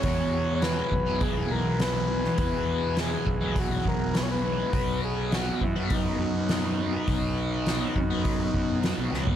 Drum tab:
HH |o---o---o---o---|o---o---o---o---|o---o---o---o---|o---o---o---o---|
SD |----o-------o--o|----o-------o---|----o-------o---|----o-------o-o-|
FT |----------------|----------------|----------------|---------------o|
BD |o-----o-o-------|o-----o-o-o-----|o-----o-o-------|o-----o-o-o-----|